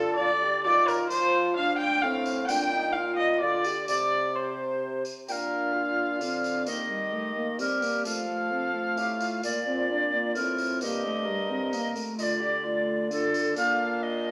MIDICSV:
0, 0, Header, 1, 6, 480
1, 0, Start_track
1, 0, Tempo, 461184
1, 1156, Time_signature, 3, 2, 24, 8
1, 14896, End_track
2, 0, Start_track
2, 0, Title_t, "Recorder"
2, 0, Program_c, 0, 74
2, 0, Note_on_c, 0, 69, 88
2, 187, Note_off_c, 0, 69, 0
2, 193, Note_on_c, 0, 74, 101
2, 665, Note_off_c, 0, 74, 0
2, 678, Note_on_c, 0, 74, 101
2, 923, Note_on_c, 0, 70, 95
2, 939, Note_off_c, 0, 74, 0
2, 1156, Note_off_c, 0, 70, 0
2, 1162, Note_on_c, 0, 72, 101
2, 1424, Note_off_c, 0, 72, 0
2, 1638, Note_on_c, 0, 77, 108
2, 1867, Note_off_c, 0, 77, 0
2, 1873, Note_on_c, 0, 79, 89
2, 2109, Note_off_c, 0, 79, 0
2, 2114, Note_on_c, 0, 77, 111
2, 2583, Note_off_c, 0, 77, 0
2, 2593, Note_on_c, 0, 79, 119
2, 3071, Note_on_c, 0, 77, 99
2, 3086, Note_off_c, 0, 79, 0
2, 3313, Note_off_c, 0, 77, 0
2, 3318, Note_on_c, 0, 75, 77
2, 3548, Note_on_c, 0, 74, 93
2, 3564, Note_off_c, 0, 75, 0
2, 4034, Note_off_c, 0, 74, 0
2, 4040, Note_on_c, 0, 74, 89
2, 4519, Note_off_c, 0, 74, 0
2, 4525, Note_on_c, 0, 72, 64
2, 5241, Note_off_c, 0, 72, 0
2, 5499, Note_on_c, 0, 79, 89
2, 5533, Note_on_c, 0, 77, 97
2, 5544, Note_off_c, 0, 79, 0
2, 6901, Note_off_c, 0, 77, 0
2, 6941, Note_on_c, 0, 75, 97
2, 7882, Note_off_c, 0, 75, 0
2, 7910, Note_on_c, 0, 70, 80
2, 8377, Note_off_c, 0, 70, 0
2, 8383, Note_on_c, 0, 77, 98
2, 9795, Note_off_c, 0, 77, 0
2, 9829, Note_on_c, 0, 74, 90
2, 10764, Note_off_c, 0, 74, 0
2, 10780, Note_on_c, 0, 70, 91
2, 11254, Note_off_c, 0, 70, 0
2, 11266, Note_on_c, 0, 75, 116
2, 12381, Note_off_c, 0, 75, 0
2, 12683, Note_on_c, 0, 75, 88
2, 12724, Note_on_c, 0, 74, 95
2, 12735, Note_off_c, 0, 75, 0
2, 13601, Note_off_c, 0, 74, 0
2, 13650, Note_on_c, 0, 69, 99
2, 14116, Note_off_c, 0, 69, 0
2, 14128, Note_on_c, 0, 77, 113
2, 14600, Note_on_c, 0, 75, 104
2, 14615, Note_off_c, 0, 77, 0
2, 14896, Note_off_c, 0, 75, 0
2, 14896, End_track
3, 0, Start_track
3, 0, Title_t, "Viola"
3, 0, Program_c, 1, 41
3, 0, Note_on_c, 1, 69, 120
3, 165, Note_off_c, 1, 69, 0
3, 171, Note_on_c, 1, 74, 114
3, 653, Note_off_c, 1, 74, 0
3, 662, Note_on_c, 1, 74, 120
3, 917, Note_on_c, 1, 70, 105
3, 932, Note_off_c, 1, 74, 0
3, 1136, Note_off_c, 1, 70, 0
3, 1142, Note_on_c, 1, 72, 125
3, 1618, Note_off_c, 1, 72, 0
3, 1629, Note_on_c, 1, 77, 120
3, 1851, Note_off_c, 1, 77, 0
3, 1857, Note_on_c, 1, 79, 122
3, 2100, Note_on_c, 1, 77, 114
3, 2116, Note_off_c, 1, 79, 0
3, 2569, Note_off_c, 1, 77, 0
3, 2575, Note_on_c, 1, 79, 125
3, 3043, Note_on_c, 1, 77, 101
3, 3059, Note_off_c, 1, 79, 0
3, 3286, Note_off_c, 1, 77, 0
3, 3292, Note_on_c, 1, 75, 98
3, 3540, Note_off_c, 1, 75, 0
3, 3549, Note_on_c, 1, 74, 98
3, 4024, Note_off_c, 1, 74, 0
3, 4030, Note_on_c, 1, 74, 108
3, 4532, Note_on_c, 1, 72, 82
3, 4547, Note_off_c, 1, 74, 0
3, 5259, Note_off_c, 1, 72, 0
3, 5499, Note_on_c, 1, 70, 60
3, 5976, Note_on_c, 1, 65, 60
3, 5992, Note_off_c, 1, 70, 0
3, 6940, Note_on_c, 1, 67, 61
3, 6956, Note_off_c, 1, 65, 0
3, 7894, Note_off_c, 1, 67, 0
3, 7900, Note_on_c, 1, 67, 59
3, 8377, Note_on_c, 1, 69, 59
3, 8393, Note_off_c, 1, 67, 0
3, 8850, Note_off_c, 1, 69, 0
3, 8856, Note_on_c, 1, 69, 59
3, 9331, Note_off_c, 1, 69, 0
3, 9345, Note_on_c, 1, 67, 61
3, 9580, Note_off_c, 1, 67, 0
3, 9587, Note_on_c, 1, 65, 56
3, 10758, Note_off_c, 1, 65, 0
3, 10774, Note_on_c, 1, 65, 62
3, 11257, Note_on_c, 1, 67, 67
3, 11272, Note_off_c, 1, 65, 0
3, 11710, Note_on_c, 1, 70, 70
3, 11726, Note_off_c, 1, 67, 0
3, 12672, Note_off_c, 1, 70, 0
3, 12679, Note_on_c, 1, 65, 75
3, 12905, Note_on_c, 1, 67, 70
3, 12921, Note_off_c, 1, 65, 0
3, 13150, Note_on_c, 1, 65, 70
3, 13166, Note_off_c, 1, 67, 0
3, 13620, Note_off_c, 1, 65, 0
3, 13626, Note_on_c, 1, 65, 66
3, 14103, Note_off_c, 1, 65, 0
3, 14114, Note_on_c, 1, 62, 78
3, 14896, Note_off_c, 1, 62, 0
3, 14896, End_track
4, 0, Start_track
4, 0, Title_t, "Trombone"
4, 0, Program_c, 2, 57
4, 0, Note_on_c, 2, 65, 76
4, 194, Note_off_c, 2, 65, 0
4, 206, Note_on_c, 2, 65, 75
4, 312, Note_off_c, 2, 65, 0
4, 443, Note_on_c, 2, 67, 84
4, 677, Note_on_c, 2, 65, 81
4, 693, Note_off_c, 2, 67, 0
4, 1138, Note_off_c, 2, 65, 0
4, 1144, Note_on_c, 2, 65, 74
4, 1628, Note_on_c, 2, 62, 81
4, 1644, Note_off_c, 2, 65, 0
4, 2118, Note_on_c, 2, 60, 78
4, 2134, Note_off_c, 2, 62, 0
4, 2578, Note_off_c, 2, 60, 0
4, 2585, Note_on_c, 2, 62, 71
4, 2828, Note_on_c, 2, 63, 80
4, 2843, Note_off_c, 2, 62, 0
4, 3074, Note_on_c, 2, 65, 74
4, 3090, Note_off_c, 2, 63, 0
4, 3556, Note_off_c, 2, 65, 0
4, 3564, Note_on_c, 2, 65, 77
4, 3803, Note_on_c, 2, 67, 75
4, 3819, Note_off_c, 2, 65, 0
4, 4045, Note_off_c, 2, 67, 0
4, 4057, Note_on_c, 2, 67, 64
4, 5241, Note_off_c, 2, 67, 0
4, 5514, Note_on_c, 2, 62, 57
4, 6469, Note_on_c, 2, 60, 56
4, 6485, Note_off_c, 2, 62, 0
4, 6945, Note_on_c, 2, 58, 57
4, 6960, Note_off_c, 2, 60, 0
4, 7181, Note_on_c, 2, 55, 69
4, 7197, Note_off_c, 2, 58, 0
4, 7414, Note_on_c, 2, 57, 65
4, 7429, Note_off_c, 2, 55, 0
4, 7648, Note_off_c, 2, 57, 0
4, 7654, Note_on_c, 2, 58, 62
4, 7903, Note_on_c, 2, 60, 65
4, 7918, Note_off_c, 2, 58, 0
4, 8139, Note_on_c, 2, 58, 70
4, 8155, Note_off_c, 2, 60, 0
4, 8381, Note_on_c, 2, 57, 60
4, 8396, Note_off_c, 2, 58, 0
4, 8621, Note_off_c, 2, 57, 0
4, 8627, Note_on_c, 2, 57, 63
4, 8862, Note_on_c, 2, 60, 61
4, 8877, Note_off_c, 2, 57, 0
4, 9091, Note_off_c, 2, 60, 0
4, 9097, Note_on_c, 2, 57, 63
4, 9822, Note_on_c, 2, 58, 61
4, 9838, Note_off_c, 2, 57, 0
4, 10053, Note_off_c, 2, 58, 0
4, 10059, Note_on_c, 2, 60, 73
4, 10302, Note_on_c, 2, 62, 66
4, 10318, Note_off_c, 2, 60, 0
4, 10542, Note_off_c, 2, 62, 0
4, 10551, Note_on_c, 2, 58, 61
4, 10795, Note_on_c, 2, 60, 60
4, 10811, Note_off_c, 2, 58, 0
4, 11268, Note_on_c, 2, 58, 62
4, 11284, Note_off_c, 2, 60, 0
4, 11506, Note_off_c, 2, 58, 0
4, 11514, Note_on_c, 2, 57, 68
4, 11753, Note_on_c, 2, 55, 66
4, 11768, Note_off_c, 2, 57, 0
4, 11973, Note_on_c, 2, 60, 67
4, 11988, Note_off_c, 2, 55, 0
4, 12211, Note_on_c, 2, 58, 74
4, 12227, Note_off_c, 2, 60, 0
4, 12443, Note_on_c, 2, 57, 68
4, 12459, Note_off_c, 2, 58, 0
4, 12913, Note_off_c, 2, 57, 0
4, 13163, Note_on_c, 2, 57, 63
4, 13641, Note_on_c, 2, 62, 72
4, 13657, Note_off_c, 2, 57, 0
4, 14121, Note_off_c, 2, 62, 0
4, 14127, Note_on_c, 2, 58, 70
4, 14896, Note_off_c, 2, 58, 0
4, 14896, End_track
5, 0, Start_track
5, 0, Title_t, "Bassoon"
5, 0, Program_c, 3, 70
5, 0, Note_on_c, 3, 50, 76
5, 677, Note_on_c, 3, 51, 75
5, 693, Note_off_c, 3, 50, 0
5, 1143, Note_off_c, 3, 51, 0
5, 1149, Note_on_c, 3, 53, 73
5, 1806, Note_off_c, 3, 53, 0
5, 2111, Note_on_c, 3, 45, 80
5, 2558, Note_off_c, 3, 45, 0
5, 2589, Note_on_c, 3, 46, 69
5, 3558, Note_on_c, 3, 50, 66
5, 3574, Note_off_c, 3, 46, 0
5, 4035, Note_off_c, 3, 50, 0
5, 4042, Note_on_c, 3, 48, 66
5, 5234, Note_off_c, 3, 48, 0
5, 5501, Note_on_c, 3, 46, 57
5, 6458, Note_on_c, 3, 50, 62
5, 6474, Note_off_c, 3, 46, 0
5, 6940, Note_on_c, 3, 51, 54
5, 6956, Note_off_c, 3, 50, 0
5, 7905, Note_on_c, 3, 55, 62
5, 7920, Note_off_c, 3, 51, 0
5, 8378, Note_off_c, 3, 55, 0
5, 8385, Note_on_c, 3, 53, 62
5, 9347, Note_on_c, 3, 45, 61
5, 9362, Note_off_c, 3, 53, 0
5, 9816, Note_off_c, 3, 45, 0
5, 9822, Note_on_c, 3, 46, 60
5, 10777, Note_on_c, 3, 45, 61
5, 10792, Note_off_c, 3, 46, 0
5, 11260, Note_on_c, 3, 43, 66
5, 11276, Note_off_c, 3, 45, 0
5, 12401, Note_off_c, 3, 43, 0
5, 12692, Note_on_c, 3, 50, 71
5, 14082, Note_off_c, 3, 50, 0
5, 14123, Note_on_c, 3, 46, 73
5, 14896, Note_off_c, 3, 46, 0
5, 14896, End_track
6, 0, Start_track
6, 0, Title_t, "Drums"
6, 918, Note_on_c, 9, 54, 60
6, 1022, Note_off_c, 9, 54, 0
6, 1148, Note_on_c, 9, 54, 81
6, 1252, Note_off_c, 9, 54, 0
6, 2349, Note_on_c, 9, 54, 52
6, 2453, Note_off_c, 9, 54, 0
6, 2588, Note_on_c, 9, 54, 81
6, 2692, Note_off_c, 9, 54, 0
6, 3793, Note_on_c, 9, 54, 54
6, 3897, Note_off_c, 9, 54, 0
6, 4039, Note_on_c, 9, 54, 81
6, 4144, Note_off_c, 9, 54, 0
6, 5254, Note_on_c, 9, 54, 51
6, 5358, Note_off_c, 9, 54, 0
6, 5500, Note_on_c, 9, 54, 69
6, 5604, Note_off_c, 9, 54, 0
6, 6462, Note_on_c, 9, 54, 51
6, 6566, Note_off_c, 9, 54, 0
6, 6704, Note_on_c, 9, 54, 51
6, 6808, Note_off_c, 9, 54, 0
6, 6937, Note_on_c, 9, 54, 70
6, 7042, Note_off_c, 9, 54, 0
6, 7900, Note_on_c, 9, 54, 50
6, 8004, Note_off_c, 9, 54, 0
6, 8141, Note_on_c, 9, 54, 52
6, 8245, Note_off_c, 9, 54, 0
6, 8382, Note_on_c, 9, 54, 75
6, 8486, Note_off_c, 9, 54, 0
6, 9340, Note_on_c, 9, 54, 49
6, 9444, Note_off_c, 9, 54, 0
6, 9579, Note_on_c, 9, 54, 49
6, 9683, Note_off_c, 9, 54, 0
6, 9819, Note_on_c, 9, 54, 77
6, 9923, Note_off_c, 9, 54, 0
6, 10775, Note_on_c, 9, 54, 50
6, 10879, Note_off_c, 9, 54, 0
6, 11015, Note_on_c, 9, 54, 48
6, 11119, Note_off_c, 9, 54, 0
6, 11251, Note_on_c, 9, 54, 67
6, 11355, Note_off_c, 9, 54, 0
6, 12207, Note_on_c, 9, 54, 53
6, 12311, Note_off_c, 9, 54, 0
6, 12443, Note_on_c, 9, 54, 49
6, 12548, Note_off_c, 9, 54, 0
6, 12685, Note_on_c, 9, 54, 70
6, 12789, Note_off_c, 9, 54, 0
6, 13644, Note_on_c, 9, 54, 51
6, 13748, Note_off_c, 9, 54, 0
6, 13885, Note_on_c, 9, 54, 53
6, 13989, Note_off_c, 9, 54, 0
6, 14117, Note_on_c, 9, 54, 73
6, 14221, Note_off_c, 9, 54, 0
6, 14896, End_track
0, 0, End_of_file